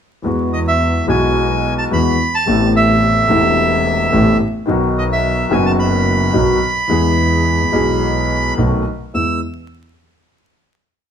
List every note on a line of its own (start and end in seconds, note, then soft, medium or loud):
0.22 1.04 E2 medium
0.22 1.04 E3 medium
0.22 1.04 G#3 soft
0.22 1.04 B3 soft
0.22 1.05 F#4 medium
0.53 0.59 D#5 medium
0.68 1.06 E5 medium
1.06 1.87 B1 medium
1.06 1.87 B2 medium
1.06 1.86 E3 medium
1.06 1.87 G#3 soft
1.06 1.88 B3 medium
1.06 1.74 G#5 medium
1.10 1.88 F#4 medium
1.78 1.84 A5 medium
1.91 2.15 E2 medium
1.91 2.15 E3 medium
1.91 2.15 G#3 soft
1.91 2.15 B3 soft
1.91 2.15 F#4 medium
1.91 2.35 B5 medium
2.35 2.72 A5 medium
2.46 3.25 A1 medium
2.46 3.26 A1 medium
2.46 3.26 A2 medium
2.46 3.25 C3 medium
2.46 3.26 A3 soft
2.46 3.26 B3 soft
2.46 3.27 E4 medium
2.76 4.37 E5 medium
3.27 4.09 E1 medium
3.27 4.09 E2 medium
3.27 4.08 C3 medium
3.27 4.08 A3 medium
3.27 4.09 B3 medium
3.32 4.10 E4 medium
4.12 4.36 A1 medium
4.12 4.36 A2 medium
4.12 4.36 C3 medium
4.12 4.36 A3 medium
4.12 4.36 B3 medium
4.12 4.36 E4 medium
4.66 5.47 B1 medium
4.66 5.47 B2 medium
4.66 5.45 D#3 medium
4.66 5.46 F#3 medium
4.66 5.47 B3 medium
4.70 5.48 F#4 medium
4.98 5.04 D#5 medium
5.12 5.53 E5 medium
5.49 6.29 F#1 medium
5.49 6.30 F#1 medium
5.49 6.30 F#2 medium
5.49 6.29 D#3 medium
5.49 6.29 F#3 medium
5.49 6.30 B3 medium
5.49 6.30 F#4 medium
5.49 5.66 G#5 medium
5.66 5.72 A5 medium
5.79 8.54 B5 medium
6.33 6.57 B1 medium
6.33 6.57 B2 medium
6.33 6.57 D#3 medium
6.33 6.57 F#3 medium
6.33 6.57 B3 soft
6.33 6.57 F#4 medium
6.88 7.68 E2 medium
6.88 7.69 E2 medium
6.88 7.68 E3 medium
6.88 7.68 G#3 medium
6.88 7.69 B3 medium
6.92 7.70 G#4 medium
7.70 8.53 B1 medium
7.70 8.53 B2 medium
7.70 8.52 E3 medium
7.70 8.52 G#3 soft
7.70 8.53 B3 medium
7.75 8.54 G#4 medium
8.57 8.81 B1 medium
8.57 8.81 B2 medium
8.57 8.81 D#3 medium
8.57 8.81 A3 soft
8.57 8.81 B3 soft
8.57 8.81 F#4 medium
9.14 9.37 E2 soft
9.14 9.38 E2 soft
9.14 9.37 G#3 soft
9.14 9.38 B3 soft
9.14 9.37 E4 soft
9.14 9.40 E6 medium